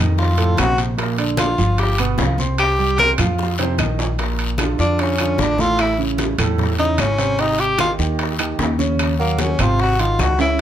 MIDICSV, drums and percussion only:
0, 0, Header, 1, 2, 480
1, 0, Start_track
1, 0, Tempo, 400534
1, 1179, Time_signature, 4, 2, 24, 8
1, 12715, End_track
2, 0, Start_track
2, 0, Title_t, "Drums"
2, 210, Note_on_c, 9, 63, 35
2, 216, Note_on_c, 9, 74, 71
2, 224, Note_on_c, 9, 60, 73
2, 330, Note_off_c, 9, 63, 0
2, 336, Note_off_c, 9, 74, 0
2, 343, Note_off_c, 9, 60, 0
2, 449, Note_on_c, 9, 63, 34
2, 455, Note_on_c, 9, 65, 68
2, 465, Note_on_c, 9, 60, 35
2, 568, Note_off_c, 9, 63, 0
2, 575, Note_off_c, 9, 65, 0
2, 584, Note_off_c, 9, 60, 0
2, 688, Note_on_c, 9, 63, 100
2, 698, Note_on_c, 9, 65, 103
2, 698, Note_on_c, 9, 66, 70
2, 699, Note_on_c, 9, 73, 74
2, 702, Note_on_c, 9, 60, 73
2, 702, Note_on_c, 9, 61, 82
2, 703, Note_on_c, 9, 75, 70
2, 808, Note_off_c, 9, 63, 0
2, 818, Note_off_c, 9, 65, 0
2, 818, Note_off_c, 9, 66, 0
2, 818, Note_off_c, 9, 73, 0
2, 822, Note_off_c, 9, 60, 0
2, 822, Note_off_c, 9, 61, 0
2, 822, Note_off_c, 9, 75, 0
2, 929, Note_on_c, 9, 63, 32
2, 936, Note_on_c, 9, 73, 72
2, 938, Note_on_c, 9, 65, 69
2, 948, Note_on_c, 9, 60, 34
2, 1048, Note_off_c, 9, 63, 0
2, 1056, Note_off_c, 9, 73, 0
2, 1058, Note_off_c, 9, 65, 0
2, 1068, Note_off_c, 9, 60, 0
2, 1169, Note_on_c, 9, 63, 36
2, 1180, Note_on_c, 9, 74, 68
2, 1181, Note_on_c, 9, 65, 70
2, 1188, Note_on_c, 9, 60, 64
2, 1289, Note_off_c, 9, 63, 0
2, 1300, Note_off_c, 9, 74, 0
2, 1301, Note_off_c, 9, 65, 0
2, 1308, Note_off_c, 9, 60, 0
2, 1408, Note_on_c, 9, 63, 37
2, 1419, Note_on_c, 9, 65, 74
2, 1528, Note_off_c, 9, 63, 0
2, 1539, Note_off_c, 9, 65, 0
2, 1646, Note_on_c, 9, 63, 100
2, 1656, Note_on_c, 9, 73, 74
2, 1658, Note_on_c, 9, 65, 95
2, 1662, Note_on_c, 9, 75, 62
2, 1672, Note_on_c, 9, 60, 60
2, 1765, Note_off_c, 9, 63, 0
2, 1776, Note_off_c, 9, 73, 0
2, 1777, Note_off_c, 9, 65, 0
2, 1782, Note_off_c, 9, 75, 0
2, 1792, Note_off_c, 9, 60, 0
2, 1889, Note_on_c, 9, 63, 35
2, 1897, Note_on_c, 9, 73, 75
2, 2008, Note_off_c, 9, 63, 0
2, 2017, Note_off_c, 9, 73, 0
2, 2136, Note_on_c, 9, 65, 69
2, 2137, Note_on_c, 9, 63, 32
2, 2141, Note_on_c, 9, 74, 80
2, 2147, Note_on_c, 9, 60, 77
2, 2256, Note_off_c, 9, 63, 0
2, 2256, Note_off_c, 9, 65, 0
2, 2261, Note_off_c, 9, 74, 0
2, 2267, Note_off_c, 9, 60, 0
2, 2370, Note_on_c, 9, 63, 30
2, 2377, Note_on_c, 9, 65, 92
2, 2385, Note_on_c, 9, 75, 63
2, 2490, Note_off_c, 9, 63, 0
2, 2497, Note_off_c, 9, 65, 0
2, 2505, Note_off_c, 9, 75, 0
2, 2609, Note_on_c, 9, 63, 96
2, 2617, Note_on_c, 9, 66, 74
2, 2622, Note_on_c, 9, 60, 76
2, 2622, Note_on_c, 9, 61, 81
2, 2626, Note_on_c, 9, 73, 71
2, 2729, Note_off_c, 9, 63, 0
2, 2737, Note_off_c, 9, 66, 0
2, 2741, Note_off_c, 9, 60, 0
2, 2741, Note_off_c, 9, 61, 0
2, 2746, Note_off_c, 9, 73, 0
2, 2854, Note_on_c, 9, 63, 80
2, 2862, Note_on_c, 9, 73, 69
2, 2974, Note_off_c, 9, 63, 0
2, 2981, Note_off_c, 9, 73, 0
2, 3089, Note_on_c, 9, 63, 36
2, 3097, Note_on_c, 9, 65, 95
2, 3100, Note_on_c, 9, 74, 67
2, 3107, Note_on_c, 9, 60, 63
2, 3107, Note_on_c, 9, 75, 72
2, 3208, Note_off_c, 9, 63, 0
2, 3217, Note_off_c, 9, 65, 0
2, 3219, Note_off_c, 9, 74, 0
2, 3227, Note_off_c, 9, 60, 0
2, 3227, Note_off_c, 9, 75, 0
2, 3338, Note_on_c, 9, 63, 39
2, 3458, Note_off_c, 9, 63, 0
2, 3573, Note_on_c, 9, 65, 69
2, 3578, Note_on_c, 9, 73, 64
2, 3580, Note_on_c, 9, 63, 91
2, 3587, Note_on_c, 9, 60, 60
2, 3693, Note_off_c, 9, 65, 0
2, 3698, Note_off_c, 9, 73, 0
2, 3700, Note_off_c, 9, 63, 0
2, 3707, Note_off_c, 9, 60, 0
2, 3812, Note_on_c, 9, 65, 104
2, 3815, Note_on_c, 9, 63, 35
2, 3815, Note_on_c, 9, 64, 96
2, 3817, Note_on_c, 9, 73, 79
2, 3825, Note_on_c, 9, 75, 67
2, 3932, Note_off_c, 9, 65, 0
2, 3935, Note_off_c, 9, 63, 0
2, 3935, Note_off_c, 9, 64, 0
2, 3937, Note_off_c, 9, 73, 0
2, 3945, Note_off_c, 9, 75, 0
2, 4054, Note_on_c, 9, 63, 36
2, 4056, Note_on_c, 9, 74, 81
2, 4063, Note_on_c, 9, 60, 77
2, 4174, Note_off_c, 9, 63, 0
2, 4175, Note_off_c, 9, 74, 0
2, 4183, Note_off_c, 9, 60, 0
2, 4296, Note_on_c, 9, 63, 35
2, 4299, Note_on_c, 9, 65, 76
2, 4307, Note_on_c, 9, 61, 95
2, 4416, Note_off_c, 9, 63, 0
2, 4419, Note_off_c, 9, 65, 0
2, 4427, Note_off_c, 9, 61, 0
2, 4532, Note_on_c, 9, 63, 89
2, 4535, Note_on_c, 9, 73, 67
2, 4539, Note_on_c, 9, 65, 101
2, 4540, Note_on_c, 9, 75, 75
2, 4545, Note_on_c, 9, 61, 81
2, 4652, Note_off_c, 9, 63, 0
2, 4655, Note_off_c, 9, 73, 0
2, 4659, Note_off_c, 9, 65, 0
2, 4660, Note_off_c, 9, 75, 0
2, 4665, Note_off_c, 9, 61, 0
2, 4774, Note_on_c, 9, 63, 36
2, 4780, Note_on_c, 9, 65, 73
2, 4782, Note_on_c, 9, 73, 71
2, 4789, Note_on_c, 9, 61, 76
2, 4894, Note_off_c, 9, 63, 0
2, 4900, Note_off_c, 9, 65, 0
2, 4902, Note_off_c, 9, 73, 0
2, 4909, Note_off_c, 9, 61, 0
2, 5014, Note_on_c, 9, 63, 36
2, 5015, Note_on_c, 9, 74, 67
2, 5020, Note_on_c, 9, 65, 67
2, 5025, Note_on_c, 9, 60, 62
2, 5134, Note_off_c, 9, 63, 0
2, 5134, Note_off_c, 9, 74, 0
2, 5140, Note_off_c, 9, 65, 0
2, 5145, Note_off_c, 9, 60, 0
2, 5248, Note_on_c, 9, 63, 34
2, 5259, Note_on_c, 9, 65, 75
2, 5368, Note_off_c, 9, 63, 0
2, 5379, Note_off_c, 9, 65, 0
2, 5488, Note_on_c, 9, 63, 89
2, 5496, Note_on_c, 9, 73, 68
2, 5498, Note_on_c, 9, 75, 64
2, 5501, Note_on_c, 9, 65, 87
2, 5505, Note_on_c, 9, 60, 57
2, 5608, Note_off_c, 9, 63, 0
2, 5616, Note_off_c, 9, 73, 0
2, 5618, Note_off_c, 9, 75, 0
2, 5620, Note_off_c, 9, 65, 0
2, 5624, Note_off_c, 9, 60, 0
2, 5731, Note_on_c, 9, 63, 38
2, 5741, Note_on_c, 9, 73, 73
2, 5851, Note_off_c, 9, 63, 0
2, 5861, Note_off_c, 9, 73, 0
2, 5972, Note_on_c, 9, 63, 34
2, 5981, Note_on_c, 9, 65, 65
2, 5981, Note_on_c, 9, 74, 80
2, 5982, Note_on_c, 9, 60, 73
2, 6092, Note_off_c, 9, 63, 0
2, 6101, Note_off_c, 9, 60, 0
2, 6101, Note_off_c, 9, 65, 0
2, 6101, Note_off_c, 9, 74, 0
2, 6210, Note_on_c, 9, 63, 35
2, 6213, Note_on_c, 9, 65, 91
2, 6219, Note_on_c, 9, 75, 62
2, 6330, Note_off_c, 9, 63, 0
2, 6332, Note_off_c, 9, 65, 0
2, 6339, Note_off_c, 9, 75, 0
2, 6451, Note_on_c, 9, 63, 95
2, 6460, Note_on_c, 9, 60, 77
2, 6460, Note_on_c, 9, 61, 87
2, 6464, Note_on_c, 9, 73, 75
2, 6571, Note_off_c, 9, 63, 0
2, 6579, Note_off_c, 9, 60, 0
2, 6579, Note_off_c, 9, 61, 0
2, 6583, Note_off_c, 9, 73, 0
2, 6691, Note_on_c, 9, 63, 81
2, 6700, Note_on_c, 9, 73, 71
2, 6811, Note_off_c, 9, 63, 0
2, 6820, Note_off_c, 9, 73, 0
2, 6935, Note_on_c, 9, 63, 34
2, 6936, Note_on_c, 9, 75, 62
2, 6937, Note_on_c, 9, 65, 85
2, 6939, Note_on_c, 9, 60, 68
2, 6943, Note_on_c, 9, 74, 65
2, 7055, Note_off_c, 9, 63, 0
2, 7056, Note_off_c, 9, 75, 0
2, 7057, Note_off_c, 9, 65, 0
2, 7059, Note_off_c, 9, 60, 0
2, 7063, Note_off_c, 9, 74, 0
2, 7173, Note_on_c, 9, 63, 34
2, 7293, Note_off_c, 9, 63, 0
2, 7409, Note_on_c, 9, 63, 78
2, 7414, Note_on_c, 9, 73, 72
2, 7416, Note_on_c, 9, 65, 69
2, 7422, Note_on_c, 9, 60, 61
2, 7529, Note_off_c, 9, 63, 0
2, 7533, Note_off_c, 9, 73, 0
2, 7536, Note_off_c, 9, 65, 0
2, 7542, Note_off_c, 9, 60, 0
2, 7651, Note_on_c, 9, 63, 36
2, 7651, Note_on_c, 9, 64, 88
2, 7652, Note_on_c, 9, 65, 97
2, 7659, Note_on_c, 9, 73, 73
2, 7660, Note_on_c, 9, 60, 35
2, 7663, Note_on_c, 9, 75, 62
2, 7770, Note_off_c, 9, 63, 0
2, 7770, Note_off_c, 9, 64, 0
2, 7772, Note_off_c, 9, 65, 0
2, 7779, Note_off_c, 9, 73, 0
2, 7780, Note_off_c, 9, 60, 0
2, 7783, Note_off_c, 9, 75, 0
2, 7889, Note_on_c, 9, 63, 37
2, 7889, Note_on_c, 9, 64, 72
2, 7894, Note_on_c, 9, 74, 65
2, 7901, Note_on_c, 9, 60, 68
2, 8009, Note_off_c, 9, 63, 0
2, 8009, Note_off_c, 9, 64, 0
2, 8014, Note_off_c, 9, 74, 0
2, 8021, Note_off_c, 9, 60, 0
2, 8131, Note_on_c, 9, 63, 34
2, 8131, Note_on_c, 9, 65, 69
2, 8141, Note_on_c, 9, 60, 37
2, 8250, Note_off_c, 9, 63, 0
2, 8251, Note_off_c, 9, 65, 0
2, 8261, Note_off_c, 9, 60, 0
2, 8366, Note_on_c, 9, 65, 99
2, 8368, Note_on_c, 9, 63, 85
2, 8375, Note_on_c, 9, 60, 69
2, 8375, Note_on_c, 9, 61, 83
2, 8375, Note_on_c, 9, 73, 67
2, 8381, Note_on_c, 9, 75, 62
2, 8486, Note_off_c, 9, 65, 0
2, 8488, Note_off_c, 9, 63, 0
2, 8495, Note_off_c, 9, 60, 0
2, 8495, Note_off_c, 9, 61, 0
2, 8495, Note_off_c, 9, 73, 0
2, 8501, Note_off_c, 9, 75, 0
2, 8610, Note_on_c, 9, 65, 59
2, 8611, Note_on_c, 9, 63, 30
2, 8612, Note_on_c, 9, 60, 31
2, 8612, Note_on_c, 9, 73, 73
2, 8730, Note_off_c, 9, 63, 0
2, 8730, Note_off_c, 9, 65, 0
2, 8732, Note_off_c, 9, 60, 0
2, 8732, Note_off_c, 9, 73, 0
2, 8851, Note_on_c, 9, 63, 35
2, 8852, Note_on_c, 9, 74, 72
2, 8854, Note_on_c, 9, 65, 64
2, 8855, Note_on_c, 9, 60, 66
2, 8971, Note_off_c, 9, 63, 0
2, 8972, Note_off_c, 9, 74, 0
2, 8974, Note_off_c, 9, 60, 0
2, 8974, Note_off_c, 9, 65, 0
2, 9090, Note_on_c, 9, 65, 68
2, 9091, Note_on_c, 9, 63, 31
2, 9209, Note_off_c, 9, 65, 0
2, 9211, Note_off_c, 9, 63, 0
2, 9330, Note_on_c, 9, 65, 88
2, 9331, Note_on_c, 9, 63, 95
2, 9336, Note_on_c, 9, 73, 73
2, 9336, Note_on_c, 9, 75, 65
2, 9337, Note_on_c, 9, 60, 59
2, 9450, Note_off_c, 9, 65, 0
2, 9451, Note_off_c, 9, 63, 0
2, 9456, Note_off_c, 9, 73, 0
2, 9456, Note_off_c, 9, 75, 0
2, 9457, Note_off_c, 9, 60, 0
2, 9573, Note_on_c, 9, 63, 36
2, 9575, Note_on_c, 9, 73, 78
2, 9693, Note_off_c, 9, 63, 0
2, 9695, Note_off_c, 9, 73, 0
2, 9814, Note_on_c, 9, 65, 68
2, 9816, Note_on_c, 9, 60, 73
2, 9817, Note_on_c, 9, 74, 76
2, 9934, Note_off_c, 9, 65, 0
2, 9936, Note_off_c, 9, 60, 0
2, 9937, Note_off_c, 9, 74, 0
2, 10056, Note_on_c, 9, 63, 36
2, 10056, Note_on_c, 9, 65, 97
2, 10060, Note_on_c, 9, 75, 61
2, 10176, Note_off_c, 9, 63, 0
2, 10176, Note_off_c, 9, 65, 0
2, 10180, Note_off_c, 9, 75, 0
2, 10293, Note_on_c, 9, 63, 89
2, 10294, Note_on_c, 9, 60, 72
2, 10294, Note_on_c, 9, 61, 83
2, 10295, Note_on_c, 9, 66, 75
2, 10296, Note_on_c, 9, 73, 67
2, 10412, Note_off_c, 9, 63, 0
2, 10414, Note_off_c, 9, 60, 0
2, 10414, Note_off_c, 9, 61, 0
2, 10414, Note_off_c, 9, 66, 0
2, 10416, Note_off_c, 9, 73, 0
2, 10534, Note_on_c, 9, 63, 77
2, 10535, Note_on_c, 9, 73, 74
2, 10654, Note_off_c, 9, 63, 0
2, 10654, Note_off_c, 9, 73, 0
2, 10772, Note_on_c, 9, 63, 34
2, 10778, Note_on_c, 9, 65, 95
2, 10779, Note_on_c, 9, 60, 60
2, 10779, Note_on_c, 9, 74, 70
2, 10779, Note_on_c, 9, 75, 68
2, 10892, Note_off_c, 9, 63, 0
2, 10898, Note_off_c, 9, 65, 0
2, 10898, Note_off_c, 9, 75, 0
2, 10899, Note_off_c, 9, 60, 0
2, 10899, Note_off_c, 9, 74, 0
2, 11013, Note_on_c, 9, 63, 37
2, 11132, Note_off_c, 9, 63, 0
2, 11248, Note_on_c, 9, 63, 90
2, 11250, Note_on_c, 9, 73, 70
2, 11252, Note_on_c, 9, 65, 69
2, 11258, Note_on_c, 9, 60, 64
2, 11367, Note_off_c, 9, 63, 0
2, 11370, Note_off_c, 9, 73, 0
2, 11372, Note_off_c, 9, 65, 0
2, 11377, Note_off_c, 9, 60, 0
2, 11489, Note_on_c, 9, 63, 39
2, 11489, Note_on_c, 9, 64, 77
2, 11490, Note_on_c, 9, 73, 73
2, 11492, Note_on_c, 9, 65, 96
2, 11501, Note_on_c, 9, 60, 38
2, 11503, Note_on_c, 9, 75, 68
2, 11609, Note_off_c, 9, 63, 0
2, 11609, Note_off_c, 9, 64, 0
2, 11610, Note_off_c, 9, 73, 0
2, 11612, Note_off_c, 9, 65, 0
2, 11621, Note_off_c, 9, 60, 0
2, 11623, Note_off_c, 9, 75, 0
2, 11731, Note_on_c, 9, 63, 35
2, 11731, Note_on_c, 9, 74, 68
2, 11739, Note_on_c, 9, 60, 72
2, 11850, Note_off_c, 9, 74, 0
2, 11851, Note_off_c, 9, 63, 0
2, 11859, Note_off_c, 9, 60, 0
2, 11971, Note_on_c, 9, 63, 34
2, 11977, Note_on_c, 9, 65, 74
2, 11980, Note_on_c, 9, 60, 36
2, 12091, Note_off_c, 9, 63, 0
2, 12097, Note_off_c, 9, 65, 0
2, 12100, Note_off_c, 9, 60, 0
2, 12212, Note_on_c, 9, 63, 82
2, 12212, Note_on_c, 9, 73, 67
2, 12216, Note_on_c, 9, 65, 84
2, 12218, Note_on_c, 9, 60, 68
2, 12218, Note_on_c, 9, 61, 92
2, 12220, Note_on_c, 9, 75, 66
2, 12332, Note_off_c, 9, 63, 0
2, 12332, Note_off_c, 9, 73, 0
2, 12336, Note_off_c, 9, 65, 0
2, 12338, Note_off_c, 9, 60, 0
2, 12338, Note_off_c, 9, 61, 0
2, 12340, Note_off_c, 9, 75, 0
2, 12448, Note_on_c, 9, 66, 73
2, 12450, Note_on_c, 9, 63, 32
2, 12452, Note_on_c, 9, 73, 68
2, 12461, Note_on_c, 9, 60, 38
2, 12567, Note_off_c, 9, 66, 0
2, 12570, Note_off_c, 9, 63, 0
2, 12572, Note_off_c, 9, 73, 0
2, 12581, Note_off_c, 9, 60, 0
2, 12715, End_track
0, 0, End_of_file